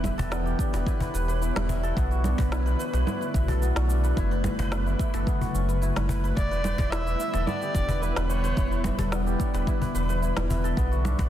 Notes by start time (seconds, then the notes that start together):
Already playing: E1 E3 B3 D4 E4 G4 A4 B4 C#5
0.04 E5, kick, cajon slap, low conga, cabasa
0.18 E1 A4, cajon bass, cajon slap, cabasa
0.31 B3, snare, cabasa
0.45 G4, cabasa
0.59 D4, kick, cabasa
0.73 E1 B4, cajon slap, cabasa
0.86 E4, kick, cabasa
1.00 B4, cajon bass, cabasa
1.14 E1 B4, cabasa
1.28 B4, cabasa
1.41 E4, cabasa
1.56 E1 E4, snare, low conga, cabasa
1.69 E5, cajon bass, cabasa
1.83 A4, cabasa
1.97 B1 D3 A3 B3 F#4, kick, cajon slap, cabasa
2.11 F#4, cabasa
2.24 D4, cajon slap, low conga, cabasa
2.38 B1 B4, kick, cajon bass, cajon slap, cabasa
2.52 E4, snare, cabasa
2.66 B4, cabasa
2.79 B4, cabasa
2.93 B1 B4, cajon slap, cabasa
3.07 E4, low conga, cabasa
3.21 E4, cabasa
3.34 B1 E5, kick, cajon slap, cabasa
3.48 A4, cajon bass, cabasa
3.62 B3, cabasa
3.76 B1 F#4, snare, cabasa
3.89 D4, cabasa
4.04 B4, cabasa
4.17 F#1 C#3 F#3 E4, kick, cajon slap, cabasa
4.31 B4, cabasa
4.44 B4, kick, cajon slap, low conga, cabasa
4.59 F#1 B4, cajon bass, cajon slap, cabasa
4.72 E4, snare, cabasa
4.86 E4, cabasa
4.99 E5, kick, cabasa
5.14 F#1 A4, cajon slap, cabasa
5.27 B3, kick, cabasa
5.41 F#4, cajon bass, cabasa
5.54 F#1 C#4, cabasa
5.69 B4, cabasa
5.82 E4, cabasa
5.96 F#1 B4, snare, low conga, cabasa
6.09 B4, cajon bass, cabasa
6.24 B4, cabasa
6.37 E1 D3 G3 B3 E4 D5, kick, cajon slap, cabasa
6.51 B4, cabasa
6.64 B4, cajon slap, low conga, cabasa
6.78 E1 B4, cajon bass, kick, cajon slap, cabasa
6.91 E4 E5, snare, cabasa
7.07 E4, cabasa
7.20 E5, cabasa
7.34 E1 A4, cajon slap, cabasa
7.46 B3 D5, low conga, cabasa
7.61 G4, cabasa
7.75 E1 D4, kick, cajon slap, cabasa
7.89 B4, cajon bass, cabasa
8.01 E4 B4, cabasa
8.16 E1 B4, snare, cabasa
8.29 B4 C#5, cabasa
8.44 B4, cabasa
8.57 E1 E4, kick, cajon slap, cabasa
8.71 E4, cabasa
8.84 E5, kick, cajon slap, low conga, cabasa
8.99 E1 A4, cajon bass, cajon slap, cabasa
9.12 B3, snare, cabasa
9.26 G4, cabasa
9.40 D4, kick, cabasa
9.54 E1 B4, cajon slap, cabasa
9.67 E4, kick, cabasa
9.81 B4, cajon bass, cabasa
9.95 E1 B4, cabasa
10.09 B4, cabasa
10.22 E4, cabasa
10.36 E1 E4, snare, low conga, cabasa
10.50 E5, cajon bass, cabasa
10.64 A4, cabasa
10.77 B1 B3, kick, cajon slap, cabasa
10.91 F#4, cabasa
11.04 D4, cajon slap, low conga, cabasa
11.19 B1 B4, cajon bass, kick, cajon slap, cabasa